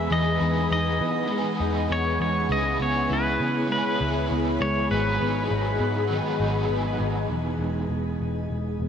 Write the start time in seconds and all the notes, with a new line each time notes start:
Already playing: G#3 B3 G#4 B4 E5 B5
0.10 E2 E3 G#3 B3 D#4 G#4 D#5 F#5
0.40 E2 B3 D#4 G#4
0.45 B3
0.70 E2 D#4 D#5
1.00 E3 B3
1.28 G#3
1.32 B3 D#4
1.38 G#4
1.60 E2 D#4
1.89 E2 B3 C#5
2.20 E2 G#3 C#5
2.49 C#2 C#3 G#3 B3 E4 G#4 C#5 D#5 B5
2.79 C#2 B3 E4 G#4 C#5
2.84 B3
3.10 C#2 E4 B4
3.39 C#3 B3
3.67 G#3
3.72 B3 E4 B4
3.78 G#4
3.99 C#2 E4
4.29 C#2 B3
4.60 C#2 G#3 C#5
4.89 G#1 G#2 D#3 F#3 B3 B4 D#5 F#5
4.93 D#4 G#4
5.20 G#1 B3 D#4 G#4
5.24 F#3
5.50 G#1 D#4
5.80 G#2 B3
6.08 D#3 F#3
6.12 B3 D#4
6.18 G#4
6.40 G#1 D#4
6.69 G#1 B3
7.00 G#1 F#3
7.30 E1 E3 G#4 D#5 G#5 B5
7.59 E1 G#3
7.89 E1 B3
8.20 E1 D#4
8.50 E1 G#3
8.80 E1 B3